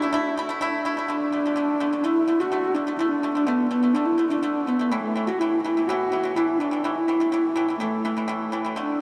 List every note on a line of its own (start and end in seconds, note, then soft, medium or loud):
0.00 0.11 A3 medium
0.00 0.63 D4 medium
0.00 0.13 E4 medium
0.13 0.33 A3 loud
0.13 0.33 E4 loud
0.37 0.48 A3 medium
0.37 0.48 E4 medium
0.49 0.59 A3 medium
0.49 0.60 E4 medium
0.61 0.81 A3 loud
0.61 0.81 E4 loud
0.85 0.95 A3 medium
0.85 0.96 E4 medium
0.97 1.07 A3 medium
0.97 1.08 E4 medium
1.08 1.28 D3 medium
1.08 1.29 A3 medium
1.08 2.06 D4 medium
1.33 1.43 D3 medium
1.33 1.43 A3 medium
1.46 1.55 D3 medium
1.46 1.56 A3 medium
1.56 1.76 D3 medium
1.56 1.77 A3 medium
1.80 1.91 D3 medium
1.80 1.91 A3 medium
1.93 2.02 D3 soft
1.93 2.03 A3 medium
2.04 2.24 D3 medium
2.04 2.24 A3 medium
2.04 2.41 E4 medium
2.28 2.38 D3 medium
2.28 2.39 A3 medium
2.40 2.50 D3 medium
2.40 2.51 A3 medium
2.40 2.76 F#4 medium
2.52 2.72 D3 medium
2.52 2.72 A3 medium
2.74 2.86 D3 medium
2.74 2.86 A3 medium
2.74 2.98 D4 medium
2.87 2.98 D3 medium
2.87 2.98 A3 medium
2.99 3.19 D3 medium
2.99 3.20 A3 medium
2.99 3.11 E4 medium
3.11 3.34 D4 medium
3.23 3.34 D3 medium
3.23 3.34 A3 medium
3.35 3.45 D3 medium
3.35 3.47 A3 medium
3.35 3.48 D4 medium
3.47 3.67 D3 medium
3.47 3.68 A3 medium
3.47 3.69 B3 medium
3.70 3.81 D3 medium
3.70 3.82 A3 medium
3.70 3.94 B3 medium
3.83 3.93 D3 soft
3.83 3.94 A3 medium
3.93 4.15 D3 medium
3.93 4.16 A3 medium
3.93 4.07 D4 medium
4.05 4.28 E4 medium
4.18 4.29 D3 medium
4.18 4.30 A3 medium
4.28 4.41 D3 medium
4.28 4.42 A3 medium
4.28 4.41 D4 medium
4.28 4.32 E4 medium
4.42 4.63 D3 medium
4.42 4.64 A3 medium
4.42 4.68 D4 medium
4.67 4.78 D3 medium
4.67 4.79 A3 medium
4.67 4.93 B3 medium
4.79 4.90 D3 medium
4.79 4.91 A3 medium
4.91 5.12 A2 medium
4.91 5.12 E3 medium
4.91 5.02 A3 medium
5.03 5.29 A3 medium
5.15 5.26 A2 medium
5.15 5.27 E3 medium
5.27 5.38 A2 medium
5.27 5.39 E3 medium
5.27 5.40 F#4 medium
5.39 5.60 A2 medium
5.39 5.61 E3 medium
5.39 5.63 E4 medium
5.64 5.75 A2 medium
5.64 5.75 E3 medium
5.64 5.89 E4 medium
5.77 5.87 A2 medium
5.77 5.88 E3 medium
5.87 6.08 A2 medium
5.87 6.09 E3 medium
5.87 6.37 F#4 medium
6.12 6.22 A2 medium
6.12 6.23 E3 medium
6.23 6.34 A2 medium
6.23 6.35 E3 medium
6.35 6.56 A2 medium
6.35 6.57 E3 medium
6.35 6.59 E4 medium
6.58 6.70 A2 medium
6.58 6.71 E3 medium
6.58 6.84 D4 medium
6.71 6.82 A2 medium
6.71 6.83 E3 medium
6.83 7.04 A2 medium
6.83 7.05 E3 medium
6.83 7.79 E4 medium
7.08 7.18 A2 medium
7.08 7.19 E3 medium
7.20 7.31 A2 medium
7.20 7.31 E3 medium
7.32 7.52 A2 medium
7.32 7.53 E3 medium
7.56 7.66 A2 medium
7.56 7.67 E3 medium
7.68 7.79 A2 soft
7.68 7.79 E3 medium
7.80 8.00 A2 medium
7.80 8.01 E3 medium
7.80 8.49 A3 medium
8.05 8.15 A2 medium
8.05 8.15 E3 medium
8.17 8.27 A2 medium
8.17 8.27 E3 medium
8.28 8.48 A2 medium
8.28 8.49 E3 medium
8.52 8.62 A2 medium
8.52 8.63 E3 medium
8.65 8.75 A2 medium
8.65 8.75 E3 medium
8.76 8.96 D3 medium
8.76 8.97 A3 medium
8.81 9.01 D4 medium